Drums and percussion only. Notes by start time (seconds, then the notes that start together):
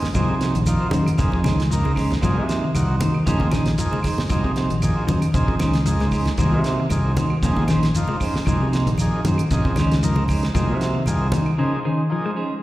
0.02 snare, low conga
0.15 kick, closed hi-hat, claves, shekere
0.41 snare, closed hi-hat, shekere
0.55 closed hi-hat
0.66 closed hi-hat, high conga, claves, shekere
0.91 closed hi-hat, high conga, low conga, shekere
1.06 closed hi-hat, claves
1.18 kick, snare, closed hi-hat, high conga, low conga, shekere
1.32 kick, high conga
1.44 snare, closed hi-hat, high conga, claves, shekere
1.60 snare, closed hi-hat
1.71 closed hi-hat, high conga, shekere
1.85 high conga
1.96 kick, snare, open hi-hat, claves, shekere
2.11 snare, closed hi-hat, low conga
2.23 kick, closed hi-hat, claves, shekere
2.49 snare, closed hi-hat, shekere
2.75 closed hi-hat, high conga, claves, shekere
3.01 closed hi-hat, high conga, low conga, shekere
3.14 claves
3.27 kick, closed hi-hat, high conga, low conga, shekere
3.40 kick, high conga
3.51 snare, closed hi-hat, high conga, claves, shekere
3.66 snare, closed hi-hat
3.78 closed hi-hat, high conga, shekere
3.93 high conga
4.03 kick, snare, open hi-hat, high conga, claves, shekere
4.18 snare, low conga
4.29 kick, closed hi-hat, claves, shekere
4.44 kick
4.56 snare, closed hi-hat, shekere
4.70 closed hi-hat
4.82 closed hi-hat, high conga, claves, shekere
5.08 closed hi-hat, high conga, low conga, shekere
5.22 closed hi-hat, claves
5.34 kick, closed hi-hat, high conga, low conga, shekere
5.48 kick
5.59 snare, closed hi-hat, high conga, claves, shekere
5.74 snare, closed hi-hat
5.86 closed hi-hat, high conga, shekere
6.00 snare, high conga
6.11 kick, open hi-hat, claves, shekere
6.25 snare, closed hi-hat
6.38 kick, closed hi-hat, claves, shekere
6.64 snare, closed hi-hat, shekere
6.90 closed hi-hat, high conga, claves, shekere
7.17 closed hi-hat, high conga, low conga, shekere
7.30 claves
7.43 kick, snare, closed hi-hat, high conga, low conga, shekere
7.56 kick, high conga
7.68 snare, closed hi-hat, high conga, claves, shekere
7.83 snare, closed hi-hat
7.94 closed hi-hat, high conga, shekere
8.08 high conga
8.20 kick, open hi-hat, claves, shekere
8.34 snare, low conga
8.46 kick, closed hi-hat, high conga, claves, shekere
8.73 snare, closed hi-hat, shekere
8.87 closed hi-hat
8.98 closed hi-hat, high conga, claves, shekere
9.25 closed hi-hat, high conga, low conga, shekere
9.38 closed hi-hat, claves
9.51 kick, closed hi-hat, high conga, low conga, shekere
9.65 kick, high conga
9.76 snare, closed hi-hat, high conga, claves, shekere
9.92 snare, closed hi-hat
10.03 closed hi-hat, shekere
10.16 high conga
10.28 kick, open hi-hat, high conga, claves, shekere
10.43 snare, closed hi-hat
10.55 kick, snare, closed hi-hat, claves, shekere
10.81 snare, closed hi-hat, shekere
11.06 closed hi-hat, high conga, claves, shekere
11.32 closed hi-hat, high conga, low conga, shekere
11.46 claves